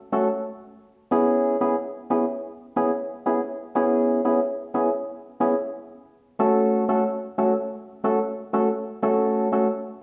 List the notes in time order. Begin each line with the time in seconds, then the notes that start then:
0.12 A3 C#4 F#4 A4
1.11 B3 C#4 E4 G#4
1.61 B3 C#4 E4 G#4
2.10 B3 C#4 E4 G#4
2.76 B3 C#4 E4 G#4
3.26 B3 C#4 E4 G#4
3.75 B3 C#4 E4 G#4
4.25 B3 C#4 E4 G#4
4.74 B3 C#4 E4 G#4
5.40 B3 C#4 E4 G#4
6.39 A3 C#4 F#4 A4
6.88 A3 C#4 F#4 A4
7.38 A3 C#4 F#4 A4
8.04 A3 C#4 F#4 A4
8.53 A3 C#4 F#4 A4
9.03 A3 C#4 F#4 A4
9.52 A3 C#4 F#4 A4